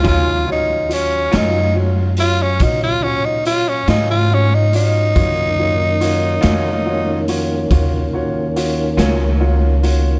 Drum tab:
HH |x-xx-xx-xx-x|x-xx-xx-xx-x|
SD |---o-----o--|---o-----o--|
BD |o-----o-----|o-----o-----|